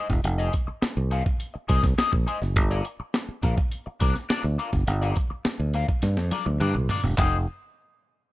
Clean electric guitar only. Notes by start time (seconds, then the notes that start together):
0.10 muted clean electric guitar stroke
0.24 muted clean electric guitar stroke
0.38 D#4 G#4 C5 D#5
0.53 muted clean electric guitar stroke
0.67 muted clean electric guitar stroke
0.82 muted clean electric guitar stroke
1.11 D#4 G#4 C5 F5
1.25 muted clean electric guitar stroke
1.54 muted clean electric guitar stroke
1.68 D#4 G#4 C5 D#5
1.83 muted clean electric guitar stroke
1.98 D#4 G#4 C5 D#5
2.12 muted clean electric guitar stroke
2.27 D#4 G#4 C5 D#5
2.42 muted clean electric guitar stroke
2.56 muted clean electric guitar stroke
2.71 D4 F4 A#4 D5
2.85 muted clean electric guitar stroke
3.00 muted clean electric guitar stroke
3.14 muted clean electric guitar stroke
3.42 D4 F4 A#4 F5
3.57 muted clean electric guitar stroke
3.86 muted clean electric guitar stroke
4.00 D4 F4 A#4 D5
4.15 muted clean electric guitar stroke
4.29 D4 F4 A#4 D5
4.43 muted clean electric guitar stroke
4.58 D4 F4 A#4 D5
4.72 muted clean electric guitar stroke
4.87 muted clean electric guitar stroke
5.02 D4 F4 A#4 D5
5.16 muted clean electric guitar stroke
5.30 muted clean electric guitar stroke
5.45 muted clean electric guitar stroke
5.74 D4 F4 A#4 F5
5.88 muted clean electric guitar stroke
6.17 muted clean electric guitar stroke
6.31 D4 F4 A#4 D5
6.46 muted clean electric guitar stroke
6.60 D4 F4 A#4 D5
6.75 muted clean electric guitar stroke
6.90 D4 F4 A#4 D5
7.04 muted clean electric guitar stroke
7.18 D#4 G#4 C5 D#5